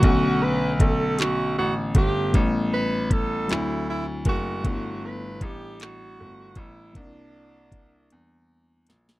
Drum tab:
HH |x---x-x---x-|x---x-x---x-|x---x-x---x-|x---x-x---x-|
CP |------x-----|------x-----|------x-----|------------|
SD |------------|------------|------------|----------oo|
BD |o---o-----o-|o---o-----o-|o---o-----o-|o---o-------|